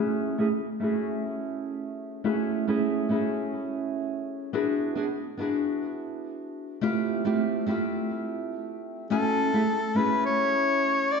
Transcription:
Already playing: nylon-string guitar A3 C#4 E4 F#4 G#4
0.38 nylon-string guitar A3 C#4 E4 F#4 G#4
0.80 nylon-string guitar A3 C#4 E4 F#4
0.84 nylon-string guitar G#4
2.24 nylon-string guitar A3 C#4 E4 F#4 G#4
2.67 nylon-string guitar A3 C#4 E4 F#4 G#4
3.09 nylon-string guitar A3 C#4 E4 F#4 G#4
4.53 nylon-string guitar B3 D4 E4 F#4 G#4
4.95 nylon-string guitar B3 D4 E4 F#4 G#4
5.37 nylon-string guitar B3 D4 E4 F#4
5.42 nylon-string guitar G#4
6.81 nylon-string guitar A3 C4 E4 F4 G4
7.25 nylon-string guitar A3 C4 E4 F4 G4
7.66 nylon-string guitar A3 C4 E4 F4
7.71 nylon-string guitar G4
9.10 nylon-string guitar A3 C#4 E4 F#4 G#5, soprano saxophone A4
9.53 nylon-string guitar A3 C#4 E4 F#4 G#4
9.95 nylon-string guitar A3 C#4 E4 F#4 G#4, soprano saxophone B4
10.25 soprano saxophone C#5
11.12 soprano saxophone D5

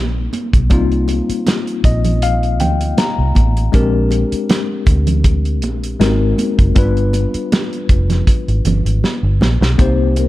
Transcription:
Already playing: fingered electric bass A#1, tine electric piano G3 A#3 C4 D#4 A#4
0.33 closed hi-hat, high conga
0.53 fingered electric bass B1, kick, closed hi-hat
0.70 fingered electric bass C2, tine electric piano G3 A#3 C4 D#4 F4, kick, closed hi-hat, muted conga
0.92 closed hi-hat
1.08 closed hi-hat, muted conga
1.29 muted fingered electric bass stroke, closed hi-hat
1.47 snare, closed hi-hat, high conga
1.67 closed hi-hat
1.84 fingered electric bass A#1, tine electric piano D#5, kick, closed hi-hat
2.04 closed hi-hat, low conga
2.22 tine electric piano F5, closed hi-hat
2.43 closed hi-hat
2.60 fingered electric bass D2, tine electric piano G5, closed hi-hat, muted conga, low conga
2.81 closed hi-hat
2.97 tine electric piano A#5, snare, closed hi-hat, high conga
3.18 fingered electric bass C2
3.35 fingered electric bass A1, kick, closed hi-hat, high conga
3.57 closed hi-hat
3.72 fingered electric bass A#1, tine electric piano G#3 C4 D4 G4 A#4, kick, closed hi-hat, muted conga
4.11 closed hi-hat, muted conga
4.32 muted fingered electric bass stroke, closed hi-hat
4.49 snare, closed hi-hat, high conga
4.86 fingered electric bass D2, kick, closed hi-hat, muted conga
5.07 closed hi-hat, low conga
5.24 kick, closed hi-hat
5.45 closed hi-hat
5.62 fingered electric bass A#1, closed hi-hat, muted conga
5.84 closed hi-hat
6.00 fingered electric bass G#1, tine electric piano G#3 C4 D#4 F#4 A#4, snare, closed hi-hat, high conga
6.38 closed hi-hat, high conga
6.59 fingered electric bass F#1, kick, closed hi-hat
6.75 fingered electric bass G1, tine electric piano G3 B3 D4 F4 B4, vibraphone B4, kick, closed hi-hat, muted conga
6.97 closed hi-hat
7.13 closed hi-hat, muted conga
7.34 muted fingered electric bass stroke, closed hi-hat
7.52 snare, closed hi-hat, high conga
7.73 closed hi-hat
7.89 fingered electric bass F1, kick, closed hi-hat
8.10 snare, closed hi-hat, low conga
8.27 kick, closed hi-hat
8.48 fingered electric bass G#1, closed hi-hat
8.65 fingered electric bass G1, closed hi-hat, muted conga, low conga
8.85 fingered electric bass G#1, closed hi-hat
9.04 snare, high conga
9.23 fingered electric bass G1
9.41 fingered electric bass A#1, snare, high conga
9.61 fingered electric bass B1, snare
9.78 tine electric piano A#3 C4 D#4 G4 C5, kick, closed hi-hat, muted conga
10.16 vibraphone A#4, closed hi-hat, muted conga

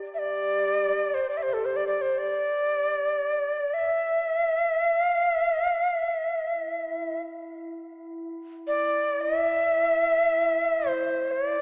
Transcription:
Already playing: glass harmonica G4
0.14 native american-style wooden flute E5
0.19 native american-style wooden flute D5
1.14 native american-style wooden flute C5
1.30 native american-style wooden flute D5
1.34 native american-style wooden flute D5 E5
1.43 native american-style wooden flute C5
1.53 native american-style wooden flute A4
1.65 native american-style wooden flute C5
1.71 native american-style wooden flute C5
1.76 native american-style wooden flute D5
1.87 native american-style wooden flute D5
2.02 native american-style wooden flute C5
2.18 native american-style wooden flute D5
3.74 native american-style wooden flute E5
4.97 native american-style wooden flute F5
5.30 native american-style wooden flute E5
5.66 native american-style wooden flute F5
6.00 native american-style wooden flute E5
6.50 glass harmonica E4
8.67 native american-style wooden flute D5
9.21 native american-style wooden flute E5
10.87 native american-style wooden flute C5
11.31 native american-style wooden flute D5

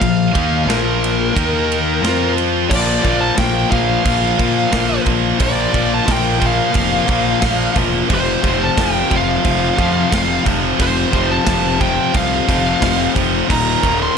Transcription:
0.00 picked electric bass A#1, distorted electric guitar A#2 F3, lead electric guitar F5, kick, ride
0.33 picked electric bass D#2, distorted electric guitar D#3 A#3 D#4, kick, ride
0.66 picked electric bass A#1, distorted electric guitar A#2 F3 A#3, lead electric guitar A#4
0.70 snare, ride
1.04 ride
1.34 picked electric bass D#2, distorted electric guitar D#3 A#3 D#4, kick, ride
1.72 ride
2.02 picked electric bass F2, distorted electric guitar F3 C4 F4, snare, ride
2.38 ride
2.69 picked electric bass A#1, distorted electric guitar A#2 F3 A#3, lead electric guitar D5, kick, crash
3.02 picked electric bass A#1, distorted electric guitar A#2 F3 A#3, kick, crash
3.21 lead electric guitar A5
3.35 picked electric bass A#1, distorted electric guitar A#2 F3 A#3, lead electric guitar G5, kick, snare, crash
3.69 picked electric bass A#1, distorted electric guitar A#2 F3 A#3, lead electric guitar F5, kick, crash
4.03 picked electric bass A#1, distorted electric guitar A#2 F3 A#3, kick, crash
4.38 distorted electric guitar A#2 F3 A#3, picked electric bass A#2, kick, crash
4.71 picked electric bass A#1, distorted electric guitar A#2 F3 A#3, kick, snare, crash
5.04 picked electric bass A#1, distorted electric guitar A#2 F3 A#3, kick, crash
5.39 picked electric bass A#1, distorted electric guitar A#2 F3 A#3, lead electric guitar D5, kick, crash
5.73 picked electric bass A#1, distorted electric guitar A#2 F3 A#3, kick, crash
5.94 lead electric guitar A5
6.05 picked electric bass A#1, distorted electric guitar A#2 F3 A#3, kick, snare, crash
6.12 lead electric guitar G5
6.39 distorted electric guitar A#2 F3 A#3, kick, crash
6.46 lead electric guitar F5
6.71 picked electric bass F1, distorted electric guitar A#2 F3 A#3, crash
6.75 kick
7.06 picked electric bass A#1, distorted electric guitar A#2 F3 A#3, kick, crash
7.40 picked electric bass A#1, distorted electric guitar A#2 F3 A#3, kick, snare, crash
7.75 picked electric bass E1, distorted electric guitar A#2 F3 A#3, kick, crash
8.09 picked electric bass F1, distorted electric guitar F2 C3 F3, kick, crash
8.14 lead electric guitar C5
8.42 picked electric bass F1, distorted electric guitar F2 C3 F3, kick, crash
8.64 lead electric guitar A5
8.77 picked electric bass F1, distorted electric guitar F2 C3 F3, kick, snare, crash
8.82 lead electric guitar G5
9.11 picked electric bass F1, distorted electric guitar F2 C3 F3, kick, crash
9.16 lead electric guitar F5
9.43 picked electric bass F1, distorted electric guitar F2 C3 F3, kick, crash
9.77 distorted electric guitar F2 C3 F3, picked electric bass F2, kick, crash
10.11 picked electric bass F1, distorted electric guitar F2 C3 F3, kick, snare, crash
10.45 picked electric bass F1, distorted electric guitar F2 C3 F3, kick, crash
10.78 picked electric bass F1, distorted electric guitar F2 C3 F3, lead electric guitar C5, kick, crash
11.11 picked electric bass F1, distorted electric guitar F2 C3 F3, kick, crash
11.31 lead electric guitar A5
11.44 picked electric bass F1, distorted electric guitar F2 C3 F3, kick, snare, crash
11.79 distorted electric guitar F2 C3 F3, lead electric guitar G5, kick, crash
12.13 picked electric bass C2, distorted electric guitar F2 C3 F3, lead electric guitar F5, kick, crash
12.47 picked electric bass F1, distorted electric guitar F2 C3 F3, kick, crash
12.80 picked electric bass F1, distorted electric guitar F2 C3 F3, kick, snare, crash
13.15 picked electric bass F1, distorted electric guitar F2 C3 F3, kick, crash
13.48 picked electric bass D#1, distorted electric guitar D#2 A#2 D#3, lead electric guitar A#5, kick, crash
13.82 picked electric bass D#1, distorted electric guitar D#2 A#2 D#3, kick, crash
14.03 lead electric guitar C6

